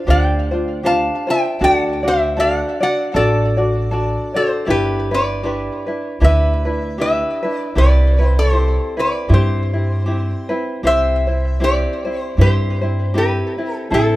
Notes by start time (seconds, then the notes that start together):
0.07 D2 D4 F4 G4 C5 D5 G5
0.51 D4 F4 C5
0.83 D4 F4 G4 C5 F5 A5
1.27 D4 F4 C5 G5
1.31 E5
1.61 D2 D4 F#4 A4 D5 G5
1.75 F#5
2.03 D4 F#4 D5
2.08 C5 E5
2.37 D4 F#4 A4 D5 F5
2.41 D5
2.57 F#5
2.80 D4 F#4 D5 F#5
3.14 A1 D4 F#4 A4 D5
3.57 D4 F#4 D5
3.91 D4 F#4 A4 D5
4.34 D4 F#4 A4 C5 D5
4.67 G1 D4 E4 G4 B4
5.11 D4 E4 B4 D5
5.43 D4 E4 G4 B4
5.86 D4 E4 B4
6.20 D2 D4 E4 G4 B4
6.24 B4 E5
6.65 D4 E4 B4
6.98 D4 E4 G4 B4 E5
7.43 D4 E4 B4
7.58 D5
7.75 C2 C4 E4 G4 B4 D5
8.19 C4 E4 B4
8.25 C5
8.39 A4 C5
8.52 C4 E4 G4
8.97 C4 E4 B4 D5
9.29 G2 C4 E4 G4
9.34 G4 C5
9.73 C4 E4
10.06 C4 E4 G4
10.49 C4 E4 B4
10.83 C2 C4 E4 G4 C5 E5
11.27 C4 E4 C5
11.60 C4 E4 G4 C5
11.64 D5
12.05 C4 E4 C5
12.21 C5
12.37 G2 C4 E4 G4 C5
12.41 G4 C5
12.81 C4 E4 C5
13.14 C4 E4 G4 B4
13.19 G4
13.58 C4 E4
13.75 A4
13.90 A1 C4 E4 A4 C5
13.95 E4